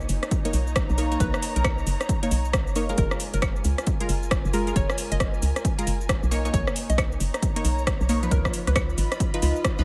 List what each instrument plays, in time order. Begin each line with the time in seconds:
Already playing: synth stab A#3 D#4 C#5, string section D#4 F4 C#5 G#5
0.00 shaker
0.09 fm bass F#1, open hi-hat, shaker
0.23 cross-stick, closed hi-hat, shaker
0.27 string section A#5
0.31 kick, closed hi-hat, shaker
0.45 synth stab A#3 D#4 C#5, closed hi-hat, shaker
0.53 fm bass B1, open hi-hat, shaker
0.67 shaker
0.76 kick, cross-stick, closed hi-hat, shaker
0.90 fm bass B1, shaker
0.98 synth stab A#3 D#4 C#5, open hi-hat, shaker
1.12 synth stab A#3 D#4 C#5, closed hi-hat, shaker
1.20 fm bass B1, synth pluck B4, kick, closed hi-hat, shaker
1.34 cross-stick, shaker
1.42 open hi-hat, shaker
1.56 fm bass B1, synth pluck A#4, closed hi-hat, shaker
1.65 kick, cross-stick, closed hi-hat, claves, shaker
1.78 shaker
1.87 fm bass F#1, open hi-hat, shaker
2.01 cross-stick, closed hi-hat, shaker
2.09 kick, closed hi-hat, shaker
2.23 synth stab A#3 D#4 C#5, closed hi-hat, shaker
2.31 fm bass B1, open hi-hat, shaker
2.45 shaker
2.53 kick, cross-stick, closed hi-hat, shaker
2.67 fm bass F#1, shaker
2.75 synth stab A#3 D#4 C#5, open hi-hat, shaker
2.89 synth stab G#3 F4 A#4, closed hi-hat, shaker
2.98 fm bass F#1, string section F4, synth pluck A#4, kick, closed hi-hat, shaker
3.11 cross-stick, shaker
3.20 string section G#5, open hi-hat, shaker
3.34 fm bass F#1, synth pluck A#4, closed hi-hat, shaker
3.42 kick, cross-stick, closed hi-hat, claves, shaker
3.56 shaker
3.64 fm bass C#2, open hi-hat, shaker
3.78 cross-stick, closed hi-hat, shaker
3.84 string section A#4, kick, closed hi-hat, shaker
4.00 synth stab G#3 F4 A#4, closed hi-hat, shaker
4.09 fm bass F#1, open hi-hat, shaker
4.23 shaker
4.31 kick, cross-stick, closed hi-hat, shaker
4.45 fm bass F#1, shaker
4.53 synth stab G#3 F4 A#4, open hi-hat, shaker
4.67 synth stab G#3 F4 A#4, closed hi-hat, shaker
4.76 fm bass F#1, synth pluck C#5, kick, closed hi-hat, shaker
4.90 cross-stick, shaker
4.98 open hi-hat, shaker
5.12 fm bass F#1, synth pluck D#5, closed hi-hat, shaker
5.20 kick, cross-stick, closed hi-hat, shaker
5.34 shaker
5.42 fm bass C#2, open hi-hat, shaker
5.56 cross-stick, closed hi-hat, shaker
5.65 kick, closed hi-hat, shaker
5.78 synth stab G#3 F4 A#4, closed hi-hat, shaker
5.87 fm bass F#1, open hi-hat, shaker
6.01 shaker
6.09 kick, cross-stick, closed hi-hat, shaker
6.23 fm bass B1, shaker
6.31 synth stab A#3 D#4 C#5, string section D#4, open hi-hat, shaker
6.45 synth stab A#3 D#4 C#5, closed hi-hat, shaker
6.54 fm bass B1, synth pluck C#5, kick, closed hi-hat, shaker
6.67 cross-stick, shaker
6.76 open hi-hat, shaker
6.86 fm bass B1, string section C#5, synth pluck D#5, closed hi-hat, shaker
6.98 kick, cross-stick, closed hi-hat, claves, shaker
7.12 shaker
7.20 fm bass F#1, string section A#5, open hi-hat, shaker
7.34 cross-stick, closed hi-hat, shaker
7.43 kick, closed hi-hat, shaker
7.56 synth stab A#3 D#4 C#5, closed hi-hat, shaker
7.65 fm bass B1, open hi-hat, shaker
7.78 shaker
7.87 kick, cross-stick, closed hi-hat, shaker
8.01 fm bass B1, shaker
8.09 synth stab A#3 D#4 C#5, open hi-hat, shaker
8.23 synth stab F3 D#4 B4, closed hi-hat, shaker
8.31 fm bass C#2, string section F4, synth pluck A#4, kick, closed hi-hat, shaker
8.45 kick, cross-stick, shaker
8.51 string section B5, open hi-hat, shaker
8.67 fm bass C#2, synth pluck B4, cross-stick, closed hi-hat, shaker
8.76 kick, cross-stick, closed hi-hat, claves, shaker
8.90 shaker
8.96 fm bass G#1, string section D#5, open hi-hat, shaker
9.12 cross-stick, closed hi-hat, shaker
9.20 kick, closed hi-hat, shaker
9.34 synth stab F3 D#4 B4, closed hi-hat, shaker
9.42 fm bass C#2, synth stab F3 D#4 B4, open hi-hat, shaker
9.56 shaker
9.65 kick, cross-stick, closed hi-hat, shaker
9.78 fm bass C#2, synth stab F3 D#4 B4, shaker